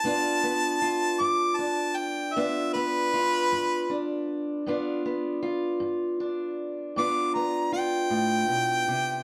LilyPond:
<<
  \new Staff \with { instrumentName = "Harmonica" } { \time 12/8 \key g \mixolydian \tempo 4. = 52 a''4. d'''8 a''8 g''8 e''8 b'2 r8 | r2. d'''8 bes''8 g''2 | }
  \new Staff \with { instrumentName = "Steel-string acoustic guitar" } { \time 12/8 \key g \mixolydian << { <b d' f'>8 b8 f'4 d'4 <b d' f'>8 b8 f'4 d'4 | <b d' f'>8 b8 f'4 d'4 <b d' f'>8 b8 f'2 | } \\ { g,4 r8 g,4 r8 g,4 r8 g,4 r8 | g,4 r8 g,4 r8 g,4 r8 a,8 b,8 c8 | } >> }
>>